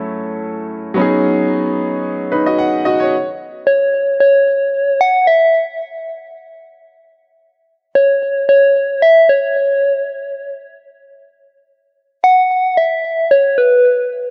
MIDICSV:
0, 0, Header, 1, 3, 480
1, 0, Start_track
1, 0, Tempo, 535714
1, 874, Time_signature, 4, 2, 24, 8
1, 12816, End_track
2, 0, Start_track
2, 0, Title_t, "Soft synth lead"
2, 0, Program_c, 0, 80
2, 3286, Note_on_c, 0, 73, 91
2, 3727, Note_off_c, 0, 73, 0
2, 3767, Note_on_c, 0, 73, 102
2, 4486, Note_on_c, 0, 78, 115
2, 4500, Note_off_c, 0, 73, 0
2, 4725, Note_on_c, 0, 76, 101
2, 4738, Note_off_c, 0, 78, 0
2, 5200, Note_off_c, 0, 76, 0
2, 7126, Note_on_c, 0, 73, 94
2, 7567, Note_off_c, 0, 73, 0
2, 7606, Note_on_c, 0, 73, 111
2, 8085, Note_on_c, 0, 76, 122
2, 8099, Note_off_c, 0, 73, 0
2, 8327, Note_on_c, 0, 73, 109
2, 8340, Note_off_c, 0, 76, 0
2, 9760, Note_off_c, 0, 73, 0
2, 10965, Note_on_c, 0, 78, 119
2, 11446, Note_on_c, 0, 76, 111
2, 11459, Note_off_c, 0, 78, 0
2, 11920, Note_off_c, 0, 76, 0
2, 11927, Note_on_c, 0, 73, 102
2, 12167, Note_on_c, 0, 71, 89
2, 12180, Note_off_c, 0, 73, 0
2, 12641, Note_off_c, 0, 71, 0
2, 12816, End_track
3, 0, Start_track
3, 0, Title_t, "Grand piano"
3, 0, Program_c, 1, 0
3, 0, Control_c, 1, 64, 127
3, 0, Note_on_c, 1, 54, 74
3, 0, Note_on_c, 1, 57, 69
3, 0, Note_on_c, 1, 61, 71
3, 0, Note_on_c, 1, 64, 68
3, 0, Note_on_c, 1, 69, 83
3, 823, Note_off_c, 1, 54, 0
3, 831, Note_off_c, 1, 57, 0
3, 839, Note_off_c, 1, 61, 0
3, 843, Note_on_c, 1, 54, 79
3, 848, Note_off_c, 1, 64, 0
3, 856, Note_off_c, 1, 69, 0
3, 859, Note_on_c, 1, 59, 73
3, 876, Note_on_c, 1, 61, 69
3, 886, Control_c, 1, 64, 0
3, 893, Note_on_c, 1, 63, 72
3, 909, Note_on_c, 1, 68, 85
3, 1025, Control_c, 1, 64, 127
3, 2035, Note_off_c, 1, 54, 0
3, 2043, Note_off_c, 1, 59, 0
3, 2051, Note_off_c, 1, 61, 0
3, 2060, Note_off_c, 1, 63, 0
3, 2068, Note_off_c, 1, 68, 0
3, 2076, Note_on_c, 1, 71, 61
3, 2081, Note_on_c, 1, 63, 54
3, 2200, Note_off_c, 1, 71, 0
3, 2203, Note_off_c, 1, 63, 0
3, 2208, Note_on_c, 1, 75, 67
3, 2213, Note_on_c, 1, 66, 59
3, 2310, Note_off_c, 1, 75, 0
3, 2312, Note_off_c, 1, 66, 0
3, 2315, Note_on_c, 1, 78, 74
3, 2543, Note_off_c, 1, 78, 0
3, 2556, Note_on_c, 1, 75, 72
3, 2562, Note_on_c, 1, 66, 63
3, 2680, Note_off_c, 1, 75, 0
3, 2684, Note_off_c, 1, 66, 0
3, 2687, Note_on_c, 1, 73, 60
3, 2806, Control_c, 1, 64, 0
3, 2915, Note_off_c, 1, 73, 0
3, 12816, End_track
0, 0, End_of_file